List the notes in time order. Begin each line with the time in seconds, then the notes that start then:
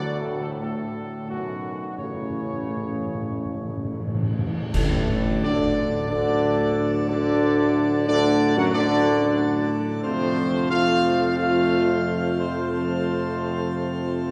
Already playing: D2 D3 A3 F#4 D5
0.18 A2 A4
0.41 A2 A4
0.62 A2 A3 F#4 A4
1.28 B1 F#2 A3 F#4
1.97 A1 A2 C#3 A3 E4 C#5
2.06 A2
2.14 A2
2.22 A2
2.30 A2
2.37 A2
2.45 A2
2.53 A2
2.61 A2
2.67 A2 A3
2.77 A2
2.92 A2
3.00 A2
3.07 A2
3.15 A2
3.22 A2
3.30 A2
3.35 A2 A3
3.46 A2
3.54 A2
3.60 A2 A3
3.69 A2
3.77 A2
3.83 A2 A3
3.92 A2
4.00 A2
4.07 A2
4.15 A2
4.23 A2
4.31 A2
4.39 A2
4.46 A2
4.54 A2
4.62 A2
4.73 A1 A2 D3 F#3 A3 D4 A4, concert bass drum, crash
5.44 D2 D3 D4 D5
6.10 D2 D3 D4 D5
7.08 D2 D3 D4 D5
8.08 D2 D3 D4 D5
8.57 F#2 F#3 F#4 F#5
8.73 D2 D3 D4 D5
10.03 F2 C3 F3 A3 C4 F4 A4 C5
10.71 F3 A3 F4 F5
11.38 F3 A3 F4 F5
12.40 C4 C5
12.72 F3 A3 C4 C5